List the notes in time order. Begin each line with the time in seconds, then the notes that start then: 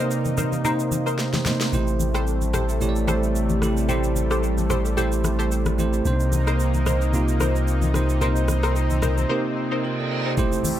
Already playing: C3 A#3 D#4 B4 C5 D5
0.00 D#4 A#4 C5
0.11 shaker
0.25 high conga, shaker
0.37 D#4 A#4 C5, high conga, low conga, shaker
0.53 high conga, shaker
0.64 C3 A#3 D#4 A#4 C5, low conga, shaker
0.80 shaker
0.92 high conga, shaker
1.06 D#4 A#4 C5, shaker
1.19 snare, shaker
1.33 snare, high conga, shaker
1.46 C3 A#3 D#4 C5, snare, high conga, low conga, shaker
1.61 snare, shaker
1.73 A1 G3 A3 E4 G4 C5, low conga, shaker
1.88 shaker
2.00 high conga, shaker
2.14 G4 A4 C5, cross-stick, shaker
2.27 shaker
2.42 high conga, shaker
2.53 G4 A4 C5, cross-stick, high conga, low conga, shaker
2.69 shaker
2.80 A3 E4 G4 C#5, low conga, shaker
2.89 D5
2.96 shaker
3.07 G4 A4 C5, cross-stick, high conga, shaker
3.23 shaker
3.36 shaker
3.50 high conga, shaker
3.62 A3 E4 G4 A4, cross-stick, high conga, shaker
3.77 shaker
3.89 A3 E4 G4 A4 C5, low conga, shaker
4.04 shaker
4.16 high conga, shaker
4.31 G4 A4 C5, cross-stick, shaker
4.44 shaker
4.58 high conga, shaker
4.70 G4 A4 C5, cross-stick, high conga, low conga, shaker
4.85 shaker
4.97 A3 E4 G4 A4 C5, low conga, shaker
5.12 shaker
5.24 cross-stick, high conga, shaker
5.39 G4 A4 C5, shaker
5.52 shaker
5.66 cross-stick, high conga, shaker
5.78 A3 E4 G4 C5, high conga, shaker
5.93 shaker
6.05 C2 C3 A#3 D4 D#4 C5, low conga, shaker
6.13 D#4
6.20 shaker
6.33 high conga, shaker
6.47 D#4 A#4 C5, cross-stick, shaker
6.60 shaker
6.74 high conga, shaker
6.86 D#4 A#4 C5, cross-stick, high conga, low conga, shaker
7.02 shaker
7.13 C3 A#3 D#4 F4, low conga, shaker
7.28 shaker
7.40 D#4 A#4 C5, cross-stick, high conga, shaker
7.56 shaker
7.68 shaker
7.82 high conga, shaker
7.94 C3 A#3 D#4 C5, cross-stick, high conga, shaker
8.09 shaker
8.21 C3 A#3 C4 D#4 A#4 C5, low conga, shaker
8.36 shaker
8.48 cross-stick, high conga, shaker
8.63 D#4 A#4 C5, cross-stick, shaker
8.76 shaker
8.90 high conga, shaker
9.02 D#4 A#4 C5, cross-stick, high conga, low conga, shaker
9.18 high conga, shaker
9.29 C3 A#3 D#4 G4 A#4 C5, reverse cymbal
9.71 D#4 A#4 C5
9.85 F4 A#4
9.99 A4 D5
10.11 A#4 D#5
10.26 G4 C5
10.37 C3 G3 A3 E4 G4 C5, kick, impact, low conga, shaker
10.52 shaker
10.64 open hi-hat, high conga, shaker